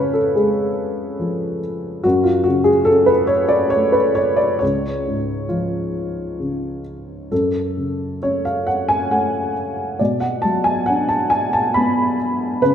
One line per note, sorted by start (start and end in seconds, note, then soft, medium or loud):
0.00 2.01 F2 medium
0.00 1.59 C#3 soft
0.00 0.15 B4 medium
0.00 2.06 C#5 medium
0.00 2.06 F5 medium
0.13 0.34 A4 medium
0.35 2.00 G#3 soft
0.35 1.58 G#4 medium
1.19 2.01 F3 soft
2.04 4.58 F#2 medium
2.04 2.26 F#4 medium
2.24 2.46 F4 medium
2.44 4.14 C#3 soft
2.44 2.67 F#4 medium
2.64 2.88 G#4 medium
2.85 4.58 C#4 soft
2.85 3.08 A4 medium
3.06 3.30 B4 medium
3.27 3.51 C#5 medium
3.48 3.71 D5 medium
3.70 3.95 C#5 medium
3.75 4.60 A3 soft
3.92 4.17 B4 medium
4.15 4.37 C#5 medium
4.36 4.61 D5 medium
4.59 7.28 C#2 medium
4.59 5.45 C#5 medium
5.07 6.82 G#2 soft
5.49 7.27 F3 soft
5.49 6.81 F4 medium
6.39 7.28 C#3 soft
7.32 9.96 F#2 soft
7.32 8.18 A4 medium
7.77 9.52 C#3 soft
8.22 9.96 C#4 soft
8.22 8.45 C#5 medium
8.45 8.67 F5 medium
8.67 8.87 F#5 medium
8.88 9.12 G#5 medium
9.11 9.97 A3 soft
9.11 9.53 F#5 medium
9.99 12.58 B2 medium
9.99 10.22 D5 medium
10.20 10.44 F#5 medium
10.42 12.15 F#3 soft
10.42 10.65 A5 medium
10.64 10.88 G#5 medium
10.86 12.58 D4 soft
10.86 11.07 F#5 medium
11.09 11.30 A5 medium
11.30 11.54 G#5 medium
11.53 11.76 A5 medium
11.74 12.59 B3 soft
11.74 12.15 B5 medium
12.62 12.75 C#3 medium
12.62 12.75 B4 medium